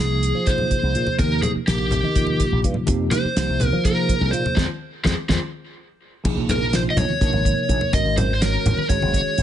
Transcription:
Already playing: C3 G#4
0.00 F3 A#3 D#4 G#4
0.11 C2
0.23 closed hi-hat
0.35 F3, low conga
0.47 C3 F3 A#3 D#4 G#4 C5, kick, closed hi-hat
0.58 low conga
0.71 kick, closed hi-hat
0.82 C2, low conga
0.95 A#2, closed hi-hat, low conga
1.07 muted slap bass stroke, low conga
1.18 D#2 C3 F3 A#3 D#4 G4 A#4, kick, closed hi-hat, high conga
1.42 G#4, closed hi-hat, low conga
1.55 muted slap bass stroke
1.66 A#1 C3 F3 A#3 D#4 G4 A#4, snare, closed hi-hat, low conga
1.80 A#1
1.91 closed hi-hat, low conga
2.03 D#3, high conga, low conga
2.15 C3 F3 A#3 D#4 F4, kick, snare, closed hi-hat, low conga
2.27 low conga
2.40 kick, snare, closed hi-hat
2.51 A#1, low conga
2.62 G2, kick, closed hi-hat, low conga
2.74 muted slap bass stroke, low conga
2.86 F2 C3 F3 A#3 D#4 G4, kick, closed hi-hat, high conga
3.11 C5, snare, closed hi-hat, low conga
3.25 muted slap bass stroke
3.36 C2 C3 F3 A#3 D#4 G4, snare, closed hi-hat
3.49 C2
3.60 closed hi-hat, low conga
3.66 A#4
3.72 F3, high conga, low conga
3.84 C3 F3 A#3 D#4 G#4 A#4, kick, closed hi-hat, low conga
4.09 kick, closed hi-hat
4.21 C2, low conga
4.31 A#2 C5, closed hi-hat, low conga
4.46 muted slap bass stroke, low conga
4.55 F2 F3 G#3 C4 F4 G#4 C5, kick, snare, high conga
5.04 F2 F3 G#3 C4 F4 G#4 C5, kick, snare, high conga
5.29 F2 F3 G#3 C4 F4 G#4 C5, kick, snare, high conga
6.24 A#1 C3 F3 A#3 D#4 G#4, kick, crash, high conga, low conga
6.36 A#1, low conga
6.49 A#4, closed hi-hat, low conga
6.61 low conga
6.73 C3 F3 A#3 D#4 F4 C5, snare, closed hi-hat
6.90 D#5
6.96 A#1 C#5, snare, closed hi-hat, low conga
7.09 high conga
7.20 A#1 C3 F3 A#3 D#4 A#4, kick, snare, closed hi-hat
7.33 G#1, low conga
7.45 kick, closed hi-hat
7.57 muted slap bass stroke
7.69 A#1, kick, closed hi-hat
7.81 muted slap bass stroke, low conga
7.92 G#1 D#3 G#3 C#4 F#4 A#4 D#5, kick, closed hi-hat, high conga, low conga
8.05 G#1, low conga
8.17 C5, closed hi-hat, low conga
8.30 C5, low conga
8.41 D#3 G#3 C#4 F#4 A#4 C#5, snare, closed hi-hat
8.65 G#1, closed hi-hat, low conga
8.78 muted slap bass stroke, high conga
8.88 G#1 D#3 G#3 C#4 F#4 G#4 C#5, kick, closed hi-hat
9.02 F#1, low conga
9.14 kick, snare, closed hi-hat
9.26 muted slap bass stroke
9.38 G#1, closed hi-hat

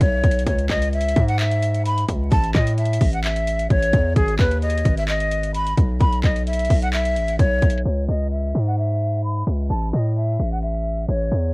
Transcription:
0.01 B1 C#5, kick, closed hi-hat
0.24 B1, kick, closed hi-hat
0.32 closed hi-hat
0.39 closed hi-hat
0.47 C#2 C#5, kick, closed hi-hat
0.59 closed hi-hat
0.70 C#2 D#5, kick, clap, closed hi-hat
0.82 closed hi-hat
0.93 E5, closed hi-hat
1.01 closed hi-hat
1.08 closed hi-hat
1.16 G#2, kick, closed hi-hat
1.28 F#5, closed hi-hat
1.39 E5, clap, closed hi-hat
1.51 closed hi-hat
1.62 closed hi-hat
1.74 closed hi-hat
1.85 B5, closed hi-hat
1.98 closed hi-hat
2.08 C#2, kick, closed hi-hat
2.32 A1 A5, kick, closed hi-hat
2.44 closed hi-hat
2.55 A2 D#5, kick, clap, closed hi-hat
2.67 closed hi-hat
2.78 E5, closed hi-hat
2.85 closed hi-hat
2.93 closed hi-hat
3.01 A1, kick, open hi-hat
3.13 F#5, closed hi-hat
3.24 E5, clap, closed hi-hat
3.36 closed hi-hat
3.47 closed hi-hat
3.59 closed hi-hat
3.70 A1 C#5, kick, closed hi-hat
3.82 closed hi-hat
3.93 E2, kick, closed hi-hat
4.16 G#1 G#4, kick, closed hi-hat
4.28 closed hi-hat
4.39 D#2 B4, kick, clap, closed hi-hat
4.51 closed hi-hat
4.62 D#5, closed hi-hat
4.70 closed hi-hat
4.78 closed hi-hat
4.85 G#1, kick, closed hi-hat
4.97 E5, closed hi-hat
5.08 D#5, clap, closed hi-hat
5.20 closed hi-hat
5.32 closed hi-hat
5.43 closed hi-hat
5.55 B5, closed hi-hat
5.67 closed hi-hat
5.78 B1, kick, closed hi-hat
6.01 B1 B5, kick, closed hi-hat
6.13 closed hi-hat
6.24 B1 D#5, kick, clap, closed hi-hat
6.36 closed hi-hat
6.47 E5, closed hi-hat
6.53 closed hi-hat
6.59 closed hi-hat
6.65 closed hi-hat
6.70 B1, kick, open hi-hat
6.82 F#5, closed hi-hat
6.93 E5, clap, closed hi-hat
7.05 closed hi-hat
7.16 A1, closed hi-hat
7.28 closed hi-hat
7.39 B1 C#5, kick, closed hi-hat
7.62 B1, kick, closed hi-hat
7.70 closed hi-hat
7.78 closed hi-hat
7.85 C#2 C#5, closed hi-hat
7.97 closed hi-hat
8.08 C#2 D#5, closed hi-hat
8.21 closed hi-hat
8.32 E5, closed hi-hat
8.39 closed hi-hat
8.47 closed hi-hat
8.55 G#2, closed hi-hat
8.67 F#5, closed hi-hat
8.78 E5, closed hi-hat
8.90 closed hi-hat
9.01 closed hi-hat
9.13 closed hi-hat
9.24 B5, closed hi-hat
9.36 closed hi-hat
9.47 C#2, closed hi-hat
9.70 A1 A5, closed hi-hat
9.82 closed hi-hat
9.93 A2 D#5, closed hi-hat
10.05 closed hi-hat
10.16 E5, closed hi-hat
10.24 closed hi-hat
10.32 closed hi-hat
10.39 A1, closed hi-hat
10.51 F#5, closed hi-hat
10.62 E5, closed hi-hat
10.74 closed hi-hat
10.85 closed hi-hat
10.97 closed hi-hat
11.08 A1 C#5, closed hi-hat
11.21 closed hi-hat
11.31 E2, closed hi-hat

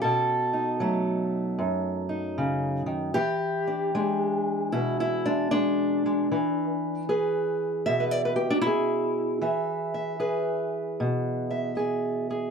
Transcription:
0.02 B2 A4
0.53 D#4
0.80 F#3 A3
1.59 F#2
2.09 D#4
2.38 C#3
2.86 D#3
3.14 E3 G4
3.67 D4
3.95 G#3 D4
4.72 B2 E4
5.00 E4
5.26 G#3 D4
5.51 G#3 D4
6.06 G#3
6.32 E3
7.09 G#4 B4
7.86 B2 E5
8.00 B4
8.11 D5
8.25 B4
8.36 G4
8.50 D4
8.62 E4
8.67 G#4
9.42 E3 E5
9.94 E5
10.20 G#4 B4
11.00 B2
11.51 E5
11.77 G#4 D5
12.30 G#4

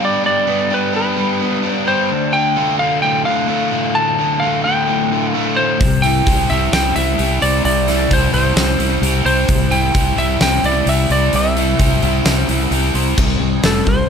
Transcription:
Already playing: G3 B3 D4
0.00 G3 G4
0.05 D5
0.25 G2 D5
0.48 B3
0.70 D4 G4 B4
0.93 B3 D4 B4
1.17 G3
1.42 B3
1.65 D4
1.86 G3 G4 C5
2.11 D2
2.33 D3 G5
2.56 A3 F4
2.79 D3 A3 F5
3.02 A2 G5
3.25 D3 F5
3.50 A3
3.71 A2 F4
3.95 D2 A5
4.20 D3
4.40 A3 F4 F5
4.64 D3 A3 G5
4.89 A2
5.11 D3
5.32 A3 F5
5.57 A2 F4 C5
5.81 C2 C3, kick, open hi-hat
6.02 E4 G5, open hi-hat
6.27 C2 G4 C5, kick, open hi-hat
6.50 C2 E4 G4 E5, open hi-hat
6.72 C2 C4 G5, snare, open hi-hat
6.96 C2 E4 E5, open hi-hat
7.19 C2 G4, open hi-hat
7.41 C2 C4 C5 D5, open hi-hat
7.65 C2 C3 D5, open hi-hat
7.88 E4, snare, open hi-hat
8.11 C2 G4 C5, kick, open hi-hat
8.33 C2 E4 G4 C5, open hi-hat
8.56 C2 C4, snare, open hi-hat
8.79 C2 E4, open hi-hat
9.02 C2 G4, open hi-hat
9.25 C2 C4 C5, open hi-hat
9.48 C2 C3, kick, open hi-hat
9.71 E4 G5, open hi-hat
9.94 C2 G4 C5, kick, open hi-hat
10.16 C2 E4 G4 E5, open hi-hat
10.41 C2 C4 G5, snare, open hi-hat
10.63 C2 E4 D5, open hi-hat
10.86 C2 G4 E5, open hi-hat
11.10 C2 C4 C5 D5, open hi-hat
11.33 C2 C3 E5, open hi-hat
11.57 E4, open hi-hat
11.79 C2 G4 C5, kick, open hi-hat
12.02 C2 E4 G4, open hi-hat
12.25 C2 C4, snare, open hi-hat
12.48 C2 E4, open hi-hat
12.71 C2 G4, open hi-hat
12.94 C2 C4 C5, open hi-hat
13.17 C2 C3 G3 C4, kick, crash
13.40 C2 C3 G3
13.63 F1 C3 G3 C4 A4, snare, open hi-hat
13.86 C2 C3 G3 C5, kick

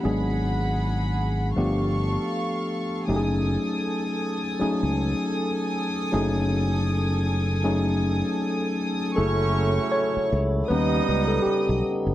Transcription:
0.03 G#1 F#3 G#3 B3 D4 G#4 F#5 B5
1.56 G1 F3 A3 B3 D4 G4 A4 F5 C#6
3.08 F#1 F#3 A3 C#4 D#4 G4 A4 G#5 D#6
3.16 G#4
4.60 F#3 A3 C#4 D#4 G#4, muted fingered electric bass stroke
4.83 C#2
6.12 F#1 F#3 A3 C#4 D#4 G#4
7.63 F#3 A3 C#4 D#4 G#4
9.16 F#1 C#3 F#3 A3 C#4 E4 G#4 A4 C#5 C#6
9.92 C#5
10.17 muted fingered electric bass stroke
10.32 C#2
10.68 D#2 G3 B3 C#4 D#4 B4 D#5 D#6
11.09 C#2
11.27 A4
11.42 G4, muted fingered electric bass stroke
11.69 B1
12.07 F#1

